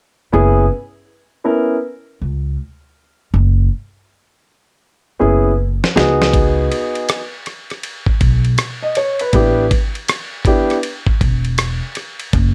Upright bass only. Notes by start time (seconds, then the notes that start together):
0.33 F#1
2.21 C#2
3.34 F#1
5.21 F#1
5.96 C#2
8.21 B1
9.34 A1
11.21 E1
12.33 F#1